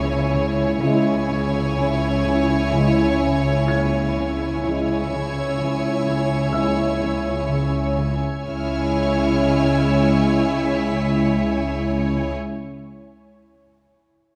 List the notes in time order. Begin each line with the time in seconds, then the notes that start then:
Already playing: C#2 C#3 E4 C#5 E5 G#5 C#6
0.36 C#3
0.82 C#2 C#3 G#3 E4 C#5 E5 G#5
1.30 C#3
1.79 C#3
2.26 C#3
2.74 C#3 G#3 E4
3.21 C#3
3.68 C#3 G#6
4.18 C#3
4.64 C#2 C#3 G#3 E4 C#5 E5 G#5
5.13 C#3
5.60 C#3
6.07 C#3
6.53 C#3 G#3 E4 E5 E6
7.02 C#3
7.49 C#3
7.97 C#3
8.45 C#2 C#3 G#3 E4 C#5 G#5 E6 F6
10.37 B6